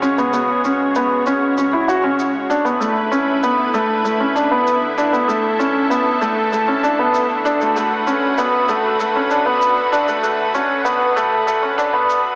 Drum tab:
SH |xxx-x-x-x-x-x-x-|xxx-x-x-x-x-x-x-|xxx-x-x-x-x-x-x-|xxx-x-x-x-x-x-x-|

SH |xxx-x-x-x-x-x-x-|